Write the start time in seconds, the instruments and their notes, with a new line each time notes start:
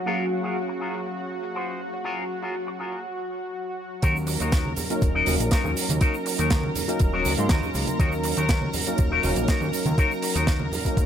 Already playing: analog synth pad F#3 F#4
0.06 tine electric piano F#3 A#3 C#4 G#4 F5, clean electric guitar F4 F#4 G#4 A#4, closed hi-hat
0.43 clean electric guitar F4 F#4 G#4 A#4, closed hi-hat
0.56 closed hi-hat
0.68 muted clean electric guitar stroke
0.80 clean electric guitar F4 F#4 G#4 A#4
0.94 closed hi-hat
1.06 closed hi-hat
1.18 muted clean electric guitar stroke
1.43 muted clean electric guitar stroke, closed hi-hat
1.55 clean electric guitar F4 F#4 G#4 C5, closed hi-hat
1.93 closed hi-hat
2.04 clean electric guitar F4 F#4 G#4 A#4, closed hi-hat
2.42 clean electric guitar F4 F#4 G#4 A#4, closed hi-hat
2.54 closed hi-hat
2.67 muted clean electric guitar stroke
2.79 clean electric guitar F4 F#4 G#4 A#4
2.92 closed hi-hat
4.02 analog synth bass D#2, tine electric piano F#3 A#3 C#4 D#4 A#4, clean electric guitar D#4 F#4 A#4 C#5, analog synth pad A#4 A#5, kick, closed hi-hat, shaker
4.16 shaker
4.27 muted clean electric guitar stroke, open hi-hat, shaker
4.40 analog synth bass D#2, clean electric guitar D#4 F#4 A#4 C#5, closed hi-hat, shaker
4.52 kick, snare, closed hi-hat, shaker
4.65 high conga
4.76 open hi-hat, low conga, shaker
4.90 tine electric piano F#3 A#3 C#4 D#4 A#4, closed hi-hat, shaker
5.02 analog synth bass D#1, muted clean electric guitar stroke, kick, closed hi-hat, shaker
5.14 clean electric guitar D#4 F#4 A#4 D#5
5.26 analog synth bass D#1, tine electric piano F#3 A#3 C#4 D#4 A#4, open hi-hat, high conga, shaker
5.39 analog synth bass A#1, closed hi-hat, shaker
5.51 clean electric guitar D#4 F#4 A#4 C#5, kick, snare, closed hi-hat, shaker
5.64 analog synth bass D#2, low conga, shaker
5.77 open hi-hat, shaker
5.89 analog synth bass D#2, muted clean electric guitar stroke, closed hi-hat, high conga, shaker
6.00 tine electric piano F#3 A#3 C#4 D#4 A#4, clean electric guitar D#4 F#4 A#4 C#5, kick, closed hi-hat, shaker
6.14 shaker
6.26 muted clean electric guitar stroke, open hi-hat, shaker
6.38 analog synth bass D#2, clean electric guitar D#4 F#4 A#4 C#5, closed hi-hat, shaker
6.50 kick, snare, closed hi-hat, shaker
6.64 high conga
6.75 open hi-hat, low conga, shaker
6.88 tine electric piano F#3 A#3 C#4 D#4 A#4, closed hi-hat, shaker
6.99 analog synth bass D#1, muted clean electric guitar stroke, kick, closed hi-hat, shaker
7.13 clean electric guitar D#4 F#4 A#4 C#5
7.25 analog synth bass D#2, open hi-hat, high conga, shaker
7.37 analog synth bass G#2, tine electric piano F#3 A#3 C#4 D#4 C6, closed hi-hat, shaker
7.49 analog synth bass D#2, clean electric guitar D#4 F#4 A#4 C#5, kick, snare, closed hi-hat, shaker
7.63 low conga, shaker
7.74 analog synth bass C#2, open hi-hat, shaker
7.87 muted clean electric guitar stroke, closed hi-hat, high conga, shaker
7.99 analog synth bass D#2, tine electric piano F#3 A#3 C#4 D#4 A#4, clean electric guitar D#4 F#4 A#4 C#5, kick, closed hi-hat, shaker
8.12 shaker
8.23 muted clean electric guitar stroke, open hi-hat, shaker
8.36 analog synth bass D#2, clean electric guitar D#4 F#4 A#4 C#5, closed hi-hat, shaker
8.49 kick, snare, closed hi-hat, shaker
8.62 high conga
8.73 open hi-hat, low conga, shaker
8.87 tine electric piano F#3 A#3 C#4 D#4 A#4, closed hi-hat, shaker
8.98 analog synth bass D#1, muted clean electric guitar stroke, kick, closed hi-hat, shaker
9.11 clean electric guitar D#4 F#4 A#4 C#5
9.23 analog synth bass D#1, tine electric piano F#3 A#3 C#4 D#4 A#4, open hi-hat, high conga, shaker
9.36 analog synth bass A#1, closed hi-hat, shaker
9.48 clean electric guitar D#4 F#4 A#4 C#5, kick, snare, closed hi-hat, shaker
9.61 analog synth bass D#2, low conga, shaker
9.73 open hi-hat, shaker
9.85 analog synth bass D#2, muted clean electric guitar stroke, closed hi-hat, high conga, shaker
9.97 tine electric piano F#3 A#3 C#4 D#4 A#4, clean electric guitar D#4 F#4 A#4 C#5, kick, closed hi-hat, shaker
10.12 shaker
10.22 muted clean electric guitar stroke, open hi-hat, shaker
10.35 analog synth bass D#2, clean electric guitar D#4 F#4 A#4 C#5, closed hi-hat, shaker
10.47 kick, snare, closed hi-hat, shaker
10.60 high conga
10.72 open hi-hat, low conga, shaker
10.85 tine electric piano F#3 A#3 C#4 D#4 A#4, kick, closed hi-hat, shaker
10.97 analog synth bass D#1, muted clean electric guitar stroke, kick, closed hi-hat, shaker